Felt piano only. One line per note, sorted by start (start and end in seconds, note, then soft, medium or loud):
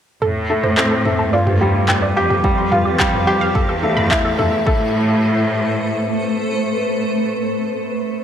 0.50 0.76 A3 medium
0.78 1.04 C4 medium
1.05 1.32 A3 medium
1.33 1.60 F4 medium
1.61 1.87 G3 medium
2.17 2.43 G4 medium
2.44 2.71 G3 medium
2.72 2.98 F4 medium
3.00 3.26 G3 medium
3.27 3.43 G4 loud
3.83 4.09 A3 medium
4.11 4.37 E4 medium
4.39 4.65 A3 medium
4.66 4.92 A3 medium